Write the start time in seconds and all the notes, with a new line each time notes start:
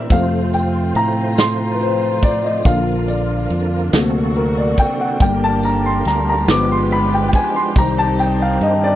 Already playing: C4 A4 A#4 C5 D5 E5
0.10 F2 C3 F3 A3 F4 C5 F5, kick, closed hi-hat, tambourine
0.53 G5, closed hi-hat, tambourine
0.95 A2 A#5, closed hi-hat
1.38 C6, snare, closed hi-hat, tambourine
1.75 B4
1.81 C5, closed hi-hat
2.23 D5, kick, closed hi-hat, tambourine
2.44 D#5
2.65 A#1 D3 F3 A#3 D4 F4 A#4 F5, kick, closed hi-hat, tambourine
3.08 D5, closed hi-hat, tambourine
3.50 F2, closed hi-hat
3.93 D2 C3 F#3 A#3 C4 F#4 A4, snare, closed hi-hat, tambourine
4.36 A#4, closed hi-hat
4.58 D5
4.78 G5, kick, closed hi-hat, tambourine
5.01 F#5
5.20 G1 D3 G3 A#3 G4 A#4 G5, kick, closed hi-hat, tambourine
5.44 A5
5.63 A#5, closed hi-hat, tambourine
5.86 C6
6.05 D2 A#5, snare, closed hi-hat
6.29 A#5
6.48 G1 F3 G#3 B3 D4 F4 B4 D6, snare, closed hi-hat, tambourine
6.72 C6
6.91 B5, closed hi-hat
7.14 G5
7.28 G5
7.33 G#5, kick, closed hi-hat, tambourine
7.56 C6
7.75 C2 D#3 G3 C4 D#4 G4 C5 A#5, kick, closed hi-hat, tambourine
7.98 A5
8.19 G5, closed hi-hat, tambourine
8.42 F5
8.61 G2 D#5, closed hi-hat
8.84 D5